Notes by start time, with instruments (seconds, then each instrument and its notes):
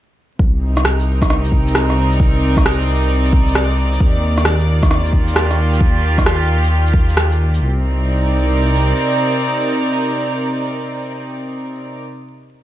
0.39 detuned saw bass C2, string section C3, kick
0.58 string section C4 D#4
0.72 string section A#4
0.77 cross-stick, shaker
0.85 cross-stick
1.00 shaker
1.22 kick, cross-stick, shaker
1.30 cross-stick
1.45 shaker
1.52 kick
1.67 shaker
1.75 cross-stick
1.86 string section D5, cross-stick, shaker
2.12 shaker
2.20 kick
2.57 kick, cross-stick, shaker
2.66 cross-stick
2.80 shaker
3.02 shaker
3.25 shaker
3.33 kick
3.48 shaker
3.55 cross-stick
3.70 shaker
3.93 shaker
4.00 detuned saw bass D#2, string section D#3, kick
4.15 string section A#3
4.38 cross-stick, shaker
4.45 cross-stick
4.60 shaker
4.67 string section F4
4.83 kick, cross-stick, shaker
4.91 cross-stick
5.06 shaker
5.13 kick
5.18 string section G4
5.28 shaker
5.36 cross-stick
5.51 cross-stick, shaker
5.74 shaker
5.81 kick
6.18 kick, cross-stick, shaker
6.26 cross-stick
6.41 shaker
6.64 shaker
6.86 shaker
6.94 kick
7.09 shaker
7.17 cross-stick
7.32 shaker
7.54 shaker
7.61 detuned saw bass C2, string section C3
7.69 string section C4
7.77 string section D#4
7.82 string section A#4
7.90 string section D5